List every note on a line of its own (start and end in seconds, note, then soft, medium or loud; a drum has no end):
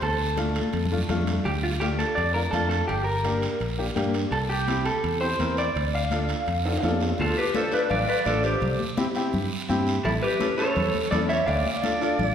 0.01 0.59 D2 medium
0.01 1.10 A4 medium
0.01 high conga soft
0.01 high timbale medium
0.01 long guiro medium
0.37 0.56 A3 medium
0.37 0.56 D4 medium
0.37 0.57 F4 medium
0.37 high conga medium
0.37 high timbale medium
0.37 short guiro medium
0.49 high conga medium
0.55 high timbale medium
0.55 short guiro medium
0.62 high conga medium
0.73 1.02 F2 medium
0.73 high timbale medium
0.73 long guiro medium
0.85 low conga medium
0.92 0.98 A3 medium
0.92 0.98 D4 medium
0.92 0.98 F4 medium
0.97 low conga medium
1.09 1.38 F2 medium
1.09 1.34 A3 medium
1.09 1.35 D4 medium
1.09 1.35 F4 medium
1.09 low conga medium
1.09 high timbale medium
1.09 low timbale medium
1.09 short guiro medium
1.21 low conga medium
1.27 high timbale medium
1.27 short guiro medium
1.33 low conga medium
1.45 2.03 D2 medium
1.45 1.50 G4 medium
1.45 high conga soft
1.45 high timbale medium
1.45 long guiro medium
1.63 1.68 F4 medium
1.80 2.00 A3 medium
1.80 2.00 D4 medium
1.80 2.00 F4 medium
1.80 1.85 G4 medium
1.80 high conga medium
1.80 high timbale medium
1.80 short guiro medium
1.99 2.17 A4 medium
1.99 high timbale medium
1.99 short guiro medium
2.15 2.46 F2 medium
2.15 2.34 D5 medium
2.15 high conga soft
2.15 high timbale medium
2.15 long guiro medium
2.34 2.41 A3 medium
2.34 2.41 D4 medium
2.34 2.41 F4 medium
2.34 2.39 A#4 medium
2.51 2.81 F2 medium
2.51 2.78 A3 medium
2.51 2.78 D4 medium
2.51 2.78 F4 medium
2.51 2.68 A4 medium
2.51 high conga medium
2.51 high timbale medium
2.51 short guiro medium
2.69 2.87 A4 medium
2.69 high timbale medium
2.69 short guiro medium
2.88 3.46 G1 medium
2.88 3.04 G4 medium
2.88 high conga soft
2.88 high timbale medium
2.88 long guiro medium
3.04 3.73 A#4 medium
3.24 3.43 A#3 medium
3.24 3.43 D4 medium
3.24 3.44 G4 medium
3.24 high conga medium
3.24 high timbale medium
3.24 short guiro medium
3.42 high timbale medium
3.42 short guiro medium
3.60 3.89 A#1 medium
3.60 high conga soft
3.60 high timbale medium
3.60 long guiro medium
3.78 3.85 A#3 medium
3.78 3.85 D4 medium
3.78 3.85 G4 medium
3.95 4.25 G2 medium
3.95 4.21 A#3 medium
3.95 4.21 D4 medium
3.95 4.21 G4 medium
3.95 high conga medium
3.95 high timbale medium
3.95 short guiro medium
4.14 high timbale medium
4.14 short guiro medium
4.31 4.89 C2 medium
4.31 4.37 A4 medium
4.31 high conga soft
4.31 high timbale medium
4.31 long guiro medium
4.50 4.85 G4 medium
4.68 4.87 C4 medium
4.68 4.87 E4 medium
4.68 4.87 G4 medium
4.68 high conga medium
4.68 high timbale medium
4.68 short guiro medium
4.85 5.19 A4 medium
4.85 high timbale medium
4.85 short guiro medium
5.04 5.32 E2 medium
5.04 high conga soft
5.04 high timbale medium
5.04 long guiro medium
5.21 5.28 C4 medium
5.21 5.28 E4 medium
5.21 5.28 G4 medium
5.21 5.58 C5 medium
5.39 5.68 E2 medium
5.39 5.65 C4 medium
5.39 5.65 E4 medium
5.39 5.65 A#4 medium
5.39 high conga medium
5.39 high timbale medium
5.39 short guiro medium
5.57 5.94 D5 loud
5.57 high timbale medium
5.57 short guiro medium
5.75 6.33 D2 medium
5.75 high conga soft
5.75 high timbale medium
5.75 long guiro medium
5.95 6.98 F5 medium
6.11 6.30 D4 medium
6.11 6.30 F4 medium
6.11 6.30 A4 medium
6.11 high conga medium
6.11 high timbale medium
6.11 short guiro medium
6.29 high timbale medium
6.29 short guiro medium
6.46 6.76 F2 medium
6.46 high conga soft
6.46 high timbale medium
6.46 long guiro medium
6.65 6.71 D4 medium
6.65 6.72 F4 medium
6.65 6.72 A4 medium
6.65 high timbale medium
6.77 high timbale loud
6.83 7.12 F2 medium
6.83 7.08 D4 medium
6.83 7.08 F4 medium
6.83 7.08 A4 medium
6.83 high conga medium
6.83 short guiro medium
6.88 low timbale medium
7.00 low timbale medium
7.00 short guiro medium
7.18 7.33 D2 loud
7.18 7.36 F4 medium
7.18 7.38 A4 medium
7.18 high conga soft
7.18 long guiro medium
7.38 7.54 G4 medium
7.38 7.58 G4 medium
7.38 7.55 B4 medium
7.54 7.61 D4 medium
7.54 7.61 F4 medium
7.54 7.71 A4 medium
7.54 7.61 A4 medium
7.54 7.76 A4 medium
7.54 7.74 C5 medium
7.54 high conga loud
7.54 short guiro medium
7.72 7.91 D4 medium
7.72 7.91 F4 medium
7.72 7.92 A4 medium
7.72 7.90 B4 medium
7.72 7.90 D5 medium
7.72 short guiro medium
7.90 8.05 A1 medium
7.90 8.07 D5 medium
7.90 8.07 D5 loud
7.90 8.09 F5 loud
7.90 high conga soft
7.90 low conga medium
7.90 long guiro medium
8.08 8.25 B4 medium
8.08 8.26 B4 medium
8.08 8.25 D5 loud
8.25 8.55 A1 loud
8.25 8.51 D4 medium
8.25 8.51 F4 medium
8.25 8.51 A4 medium
8.25 8.43 A4 medium
8.25 8.47 A4 medium
8.25 8.44 D5 loud
8.25 high conga medium
8.25 short guiro medium
8.43 8.77 G4 medium
8.43 8.80 G4 medium
8.43 8.79 C5 medium
8.43 short guiro medium
8.61 8.76 C2 loud
8.61 high conga soft
8.61 low conga medium
8.61 long guiro medium
8.79 high conga medium
8.97 9.04 C4 loud
8.97 9.04 E4 medium
8.97 9.04 G4 loud
8.97 high conga loud
8.97 short guiro medium
9.15 9.34 C4 medium
9.15 9.34 E4 medium
9.15 9.35 G4 medium
9.15 short guiro medium
9.33 9.48 G2 medium
9.33 high conga soft
9.33 low conga medium
9.33 long guiro medium
9.69 9.98 G2 medium
9.69 9.94 C4 medium
9.69 9.94 E4 medium
9.69 9.94 G4 loud
9.69 high conga medium
9.69 short guiro medium
9.87 short guiro medium
10.05 10.19 A1 loud
10.05 10.10 E4 medium
10.05 10.14 E4 medium
10.05 10.10 A4 medium
10.05 high conga soft
10.05 low conga medium
10.05 long guiro medium
10.22 10.56 G4 medium
10.22 10.57 B4 medium
10.40 10.46 C#4 medium
10.40 10.46 E4 medium
10.40 10.47 A4 medium
10.40 high conga loud
10.40 short guiro medium
10.58 10.77 C#4 medium
10.58 10.77 E4 medium
10.58 11.08 A4 medium
10.58 10.77 A4 medium
10.58 11.09 A4 medium
10.58 11.13 C#5 medium
10.58 short guiro medium
10.76 10.91 E2 medium
10.76 high conga soft
10.76 low conga medium
10.76 long guiro medium
10.94 high conga medium
11.10 11.41 E2 medium
11.10 11.37 C#4 medium
11.10 11.37 E4 medium
11.10 11.19 A4 medium
11.10 11.37 A4 medium
11.10 11.18 A4 medium
11.10 11.16 D5 medium
11.10 high conga medium
11.10 low conga medium
11.10 short guiro medium
11.29 11.46 C#5 medium
11.29 11.47 C#5 medium
11.29 11.46 E5 medium
11.29 short guiro medium
11.46 11.62 D2 loud
11.46 12.35 D5 medium
11.46 12.35 F5 loud
11.46 high conga soft
11.46 long guiro medium
11.66 high conga medium
11.83 11.89 D4 medium
11.83 11.90 F4 medium
11.83 11.90 A4 medium
11.83 high conga loud
11.83 short guiro medium
12.01 12.20 D4 medium
12.01 12.20 F4 medium
12.01 12.20 A4 medium
12.01 short guiro medium
12.19 12.33 A1 medium
12.19 high conga soft
12.19 low conga medium
12.19 long guiro medium